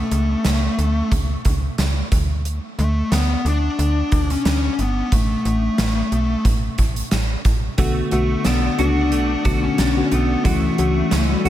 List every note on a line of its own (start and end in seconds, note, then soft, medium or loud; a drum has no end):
0.00 1.09 A3 medium
0.11 0.36 C#2 loud
0.11 closed hi-hat medium
0.45 0.69 C#2 loud
0.45 snare medium
0.45 closed hi-hat medium
0.78 1.02 D2 medium
0.78 closed hi-hat medium
1.12 1.36 C#2 medium
1.12 kick medium
1.12 closed hi-hat medium
1.45 1.69 C#2 medium
1.45 kick medium
1.45 closed hi-hat medium
1.78 2.02 C#2 loud
1.78 snare loud
1.78 closed hi-hat medium
2.12 2.60 D2 medium
2.12 kick loud
2.12 closed hi-hat medium
2.45 closed hi-hat medium
2.79 3.03 D2 loud
2.79 3.12 A3 medium
2.79 closed hi-hat medium
3.12 3.36 D2 loud
3.12 3.47 B3 medium
3.12 snare medium
3.12 closed hi-hat medium
3.45 3.69 D2 medium
3.45 4.31 D4 medium
3.45 closed hi-hat medium
3.79 4.03 D2 medium
3.79 closed hi-hat medium
4.12 4.36 D2 medium
4.12 kick medium
4.12 closed hi-hat medium
4.30 4.81 C#4 medium
4.30 closed hi-hat medium
4.45 4.69 D2 medium
4.45 snare loud
4.45 closed hi-hat medium
4.79 5.03 G1 medium
4.79 5.10 B3 medium
4.79 closed hi-hat medium
5.12 5.36 A1 loud
5.12 6.42 A3 medium
5.12 kick medium
5.12 closed hi-hat medium
5.45 5.69 A1 loud
5.45 closed hi-hat medium
5.78 6.03 A1 loud
5.78 snare medium
5.78 closed hi-hat medium
6.12 6.36 B1 medium
6.12 closed hi-hat medium
6.45 6.69 A1 loud
6.45 kick medium
6.45 closed hi-hat medium
6.78 7.02 A1 medium
6.78 kick medium
6.78 closed hi-hat medium
6.96 closed hi-hat medium
7.11 7.36 A1 medium
7.11 snare loud
7.11 closed hi-hat medium
7.45 7.69 A1 medium
7.45 kick medium
7.45 closed hi-hat medium
7.78 8.02 B1 loud
7.78 8.06 D3 medium
7.78 8.06 A3 medium
7.78 8.12 A3 medium
7.78 8.06 B3 medium
7.78 8.07 F#4 medium
7.78 8.78 F#4 medium
7.78 kick medium
7.78 closed hi-hat medium
8.11 8.36 B1 medium
8.11 8.67 D3 medium
8.11 8.67 A3 medium
8.11 9.11 A3 medium
8.11 8.45 A3 medium
8.11 8.68 B3 medium
8.11 8.68 F#4 medium
8.11 closed hi-hat medium
8.45 8.70 B1 medium
8.45 8.80 B3 medium
8.45 9.77 D4 medium
8.45 snare medium
8.45 closed hi-hat medium
8.78 9.14 C#2 medium
8.78 9.34 A3 medium
8.78 9.34 B3 medium
8.78 9.34 D4 medium
8.78 9.63 D4 medium
8.78 9.45 F#4 medium
8.78 9.35 F#4 medium
8.78 closed hi-hat medium
9.12 9.36 B1 loud
9.12 10.12 A3 medium
9.12 closed hi-hat medium
9.44 9.69 B1 medium
9.44 9.87 D3 medium
9.44 9.87 A3 medium
9.44 9.87 B3 medium
9.44 10.46 F#4 medium
9.44 9.87 F#4 medium
9.44 kick medium
9.44 closed hi-hat medium
9.64 10.13 C#4 medium
9.78 10.03 B1 medium
9.78 10.53 D4 medium
9.78 snare loud
9.78 closed hi-hat medium
9.96 10.37 D3 medium
9.96 10.37 A3 medium
9.96 10.37 B3 medium
9.96 10.37 F#4 medium
10.12 10.36 B1 medium
10.12 10.78 A3 medium
10.12 10.45 B3 medium
10.12 closed hi-hat medium
10.44 10.69 C#2 medium
10.44 10.73 E3 medium
10.44 11.49 E3 medium
10.44 10.73 A3 medium
10.44 11.33 A3 medium
10.44 10.73 C#4 medium
10.44 10.73 F#4 medium
10.44 11.45 F#4 medium
10.44 kick loud
10.44 closed hi-hat medium
10.78 11.03 C#2 loud
10.78 11.34 E3 medium
10.78 11.34 A3 medium
10.78 11.49 A3 medium
10.78 11.34 C#4 medium
10.78 11.35 F#4 medium
10.78 closed hi-hat medium
11.11 11.36 C#2 loud
11.11 11.49 C#4 medium
11.11 snare medium
11.11 closed hi-hat medium
11.33 11.49 G3 medium
11.44 11.49 D2 medium
11.44 11.49 E3 medium
11.44 11.49 A3 medium
11.44 11.49 C#4 medium
11.44 11.49 F#4 medium
11.44 closed hi-hat medium